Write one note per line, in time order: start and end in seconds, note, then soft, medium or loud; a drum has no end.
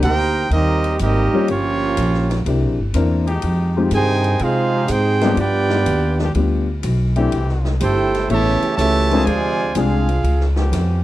0.02 0.50 D2 loud
0.02 0.25 D#3 loud
0.02 0.48 A#3 medium
0.02 0.25 A#3 medium
0.02 0.25 C4 medium
0.02 0.47 D#4 medium
0.02 0.48 D#4 medium
0.02 0.47 G4 medium
0.02 0.24 A#4 loud
0.02 0.48 A#4 medium
0.02 0.48 C5 loud
0.02 0.48 G5 loud
0.02 hi-hat pedal medium
0.02 ride medium
0.51 0.98 D#2 loud
0.51 0.97 G3 medium
0.51 0.97 A#3 medium
0.51 0.97 C4 medium
0.51 0.97 D#4 medium
0.51 0.97 G4 medium
0.51 0.96 A#4 medium
0.51 0.97 D#5 medium
0.51 ride medium
0.84 ride medium
0.99 1.31 G#1 loud
0.99 1.46 G3 medium
0.99 1.46 A#3 loud
0.99 1.46 C4 medium
0.99 1.45 D#4 medium
0.99 1.46 G4 medium
0.99 1.46 A#4 medium
0.99 1.46 D#5 medium
0.99 hi-hat pedal medium
0.99 ride medium
1.34 1.47 G3 medium
1.34 1.48 A#3 medium
1.34 1.48 C#4 medium
1.34 1.48 F4 medium
1.34 1.48 G4 medium
1.34 muted upright bass stroke soft
1.48 1.96 G1 medium
1.48 2.43 F3 medium
1.48 2.43 A#3 medium
1.48 2.44 A#3 medium
1.48 2.43 C#4 medium
1.48 2.43 F4 medium
1.48 2.43 G4 medium
1.48 2.43 C#5 medium
1.48 ride medium
1.97 2.45 A#1 loud
1.97 hi-hat pedal medium
1.97 ride medium
2.14 snare soft
2.30 snare medium
2.30 ride soft
2.46 2.62 C2 loud
2.46 2.76 A#3 medium
2.46 2.76 C4 soft
2.46 2.77 D4 soft
2.46 2.77 E4 medium
2.46 2.77 G4 medium
2.46 ride medium
2.62 2.78 A#1 medium
2.79 2.94 G1 medium
2.94 3.42 E2 loud
2.94 3.24 A#3 medium
2.94 3.24 C4 medium
2.94 3.25 D4 medium
2.94 3.25 E4 medium
2.94 3.25 A#4 medium
2.94 hi-hat pedal medium
2.94 ride medium
3.24 3.87 F3 loud
3.24 3.88 G#3 medium
3.24 3.88 D#4 loud
3.24 3.88 G4 loud
3.24 ride medium
3.42 3.91 F2 medium
3.42 ride medium
3.77 3.91 G#3 medium
3.77 3.91 C4 medium
3.77 3.91 D#4 medium
3.77 3.90 F4 medium
3.77 3.91 G4 medium
3.91 4.39 G2 loud
3.91 4.38 C3 loud
3.91 4.38 D#3 loud
3.91 4.38 D#4 loud
3.91 4.38 G#4 medium
3.91 4.39 C5 medium
3.91 4.38 G5 loud
3.91 4.38 G#5 loud
3.91 hi-hat pedal medium
3.91 ride medium
4.24 ride medium
4.39 4.88 C3 medium
4.39 4.90 G#3 medium
4.39 4.87 C4 medium
4.39 4.90 D#4 medium
4.39 4.90 F4 medium
4.39 4.90 G#4 medium
4.39 4.90 C5 medium
4.39 4.90 F5 loud
4.39 ride medium
4.72 5.18 F3 medium
4.72 5.19 G#3 medium
4.72 5.18 D#4 medium
4.72 5.18 G4 loud
4.88 5.36 G#2 medium
4.88 5.38 C4 medium
4.88 5.38 D#4 loud
4.88 5.39 D#4 medium
4.88 5.38 G#4 loud
4.88 5.39 G#4 medium
4.88 5.39 C5 medium
4.88 5.39 G5 loud
4.88 hi-hat pedal medium
4.88 ride medium
5.21 5.83 F3 loud
5.21 5.37 G3 medium
5.21 5.83 B3 loud
5.21 5.37 B3 medium
5.21 5.83 D4 loud
5.21 5.37 D4 medium
5.21 5.37 F4 medium
5.21 5.83 G4 loud
5.21 5.37 G4 medium
5.21 snare medium
5.21 ride medium
5.37 5.84 G2 medium
5.37 6.31 B3 medium
5.37 6.31 D4 medium
5.37 6.32 F4 medium
5.37 6.31 G4 medium
5.37 6.32 B4 medium
5.37 6.32 D5 medium
5.37 6.32 G5 medium
5.37 ride medium
5.70 snare medium
5.86 6.33 D#2 loud
5.86 hi-hat pedal medium
5.86 ride medium
6.18 6.30 F3 loud
6.18 6.30 B3 loud
6.18 6.29 D4 medium
6.18 6.30 G4 loud
6.18 snare soft
6.35 6.82 D2 loud
6.35 6.65 G3 medium
6.35 6.65 B3 medium
6.35 6.65 D4 medium
6.35 6.66 F4 medium
6.35 6.66 G4 medium
6.35 ride medium
6.83 7.31 B1 loud
6.83 hi-hat pedal medium
6.83 ride medium
7.16 7.78 E3 loud
7.16 7.30 A3 medium
7.16 7.78 A3 loud
7.16 7.78 C4 loud
7.16 7.31 C4 medium
7.16 7.30 D4 medium
7.16 7.31 E4 medium
7.16 7.77 G4 loud
7.16 7.31 G4 medium
7.16 ride medium
7.32 7.80 C2 medium
7.32 ride medium
7.49 snare soft
7.65 snare medium
7.80 8.28 G1 loud
7.80 8.26 A3 medium
7.80 8.26 E4 medium
7.80 8.27 E4 medium
7.80 8.25 G4 medium
7.80 8.27 A4 medium
7.80 8.27 C5 medium
7.80 8.27 G5 medium
7.80 hi-hat pedal medium
7.80 ride medium
8.14 snare soft
8.14 ride medium
8.29 8.60 A1 medium
8.29 8.75 C#3 loud
8.29 8.75 E3 loud
8.29 8.59 A3 medium
8.29 8.75 A3 medium
8.29 8.59 B3 medium
8.29 8.59 C#4 medium
8.29 8.60 E4 medium
8.29 8.60 G4 medium
8.29 8.76 G4 loud
8.29 8.76 C#5 loud
8.29 8.76 E5 loud
8.29 8.76 A5 loud
8.29 ride medium
8.61 9.07 E3 medium
8.61 9.07 A3 medium
8.61 9.07 C#4 medium
8.61 9.07 G4 loud
8.61 muted upright bass stroke soft
8.61 ride medium
8.77 9.25 C#2 medium
8.77 9.23 C#3 loud
8.77 9.23 E3 loud
8.77 9.23 A3 loud
8.77 9.23 G4 medium
8.77 9.23 C#5 medium
8.77 9.23 E5 medium
8.77 9.23 A5 loud
8.77 hi-hat pedal medium
8.77 ride medium
9.10 9.72 F3 loud
9.10 9.25 G#3 medium
9.10 9.25 C4 medium
9.10 9.73 C4 loud
9.10 9.72 D4 loud
9.10 9.26 D4 medium
9.10 9.26 F4 medium
9.10 9.72 G#4 loud
9.10 9.26 A#4 medium
9.10 ride medium
9.24 9.74 D2 medium
9.24 9.74 C3 medium
9.24 9.74 F3 loud
9.24 9.75 G#3 loud
9.24 9.75 F4 medium
9.24 9.74 C5 medium
9.24 9.75 D5 medium
9.24 9.75 G#5 loud
9.24 ride medium
9.75 10.22 C2 loud
9.75 10.05 G#3 medium
9.75 10.53 G#3 medium
9.75 10.05 C4 medium
9.75 10.21 C4 medium
9.75 10.05 D4 medium
9.75 10.21 D4 medium
9.75 10.53 F4 medium
9.75 10.05 F4 medium
9.75 10.53 G#4 medium
9.75 10.06 G#4 medium
9.75 10.20 C5 medium
9.75 10.53 F5 medium
9.75 hi-hat pedal medium
9.75 ride medium
10.09 ride medium
10.24 10.71 C#2 medium
10.24 ride medium
10.40 snare soft
10.55 11.02 F3 medium
10.55 11.01 B3 medium
10.55 11.01 C#4 medium
10.55 11.01 G4 loud
10.55 snare medium
10.72 11.04 F2 loud
10.72 snare soft
10.72 hi-hat pedal medium
10.72 ride medium